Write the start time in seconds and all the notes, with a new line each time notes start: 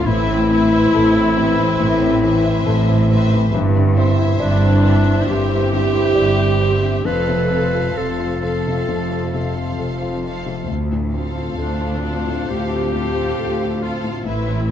0.05 A1 A2 C4 E4 B4 C5 E5
0.28 E3
0.50 C4 B4 C5 E5
0.72 E4
0.93 A1 A2 A4
1.15 E4
1.37 C4 B4 C5 E5
1.59 E3
1.80 A1 A2
2.02 C4
2.23 E3 B4 C5 E5
2.46 E4
2.66 A1 A2 A4
2.89 E4
3.10 C4 B4 C5 E5
3.33 E3
3.53 G1 G2 C4 E4
3.76 D3
3.96 C4 C5 E5
4.19 E4
4.39 G1 G2 C4 D4 E4 D5
4.62 E4
4.83 C4 C5 E5
5.06 D3
5.28 G1 G2 G4
5.50 C4
5.72 D3 C5 E5
5.93 E4
6.15 G1 G2 D5
6.38 E4
6.60 C4 C5 E5
6.82 D3
7.05 F1 F2 C4 F4 A4 B4 C5 F5
7.29 C3
7.50 C4 A4 C5 F5
7.74 F4
7.96 F1 F2 C4 F4 A4
8.20 F4
8.43 C4 A4 C5 F5
8.67 C3
8.88 F1 F2
9.11 C4
9.34 C3 A4 C5 F5
9.56 F4
9.79 F1 F2 A4
10.02 F4
10.24 C4 A4 C5 F5
10.46 C3
10.67 D2 C4 F4
10.91 A2
11.14 C4 A4 C5 F5
11.36 F4
11.58 D2 D4 A4
11.81 F4
12.04 C4 A4 C5 F5
12.27 A2
12.50 D2 G4
12.72 C4
12.94 A2 A4 C5 F5
13.17 F4
13.39 D2 A4
13.61 F4
13.82 C4 F4 A4 C5 F5
14.04 A2
14.24 A1 A2 C4 E4 B4 C5 E5
14.47 E3